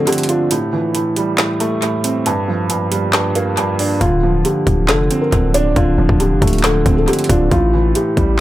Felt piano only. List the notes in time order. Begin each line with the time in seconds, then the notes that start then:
0.07 G4
0.29 F4
4.01 F4
4.45 G4
4.89 A4
5.21 A#4
5.54 D5
5.76 F4
6.20 G4
6.64 A4
6.97 A4
7.08 G4
7.30 F4
7.52 F4
7.95 G4